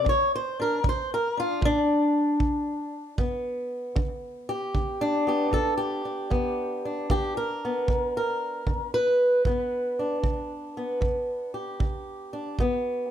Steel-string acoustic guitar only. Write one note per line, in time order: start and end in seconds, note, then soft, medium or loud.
0.05 0.78 D3 medium
0.09 0.33 C#5 loud
0.36 0.60 C5 loud
0.60 0.82 D4 medium
0.60 0.86 A#4 medium
0.84 1.36 D4 medium
0.89 1.12 C5 medium
1.14 1.38 A#4 medium
1.37 1.62 D4 medium
1.37 1.64 F4 medium
1.61 2.34 A2 medium
1.65 3.18 D4 loud
3.18 3.91 G2 medium
3.18 5.27 B3 soft
3.96 4.69 D3 medium
4.49 5.27 G4 medium
4.75 5.47 D3 medium
5.01 6.04 D4 medium
5.27 6.31 B3 soft
5.27 5.53 G4 medium
5.51 6.25 D3 medium
5.51 5.77 A4 medium
5.78 7.09 G4 medium
6.05 6.85 D4 soft
6.30 7.04 G2 medium
6.30 7.64 B3 medium
6.85 9.99 D4 soft
7.10 7.83 D3 medium
7.10 7.36 G4 loud
7.37 8.15 A#4 medium
7.65 9.47 B3 soft
7.90 8.62 D3 medium
8.17 8.94 A#4 medium
8.67 9.40 D3 medium
8.94 11.54 B4 loud
9.46 10.19 G2 medium
9.46 10.77 B3 soft
9.99 12.32 D4 soft
10.23 10.97 D3 medium
10.77 12.56 B3 soft
11.01 11.75 D3 medium
11.54 13.11 G4 medium
11.80 12.53 D3 medium
12.33 12.56 D4 soft
12.60 13.11 G2 medium
12.60 13.11 B3 medium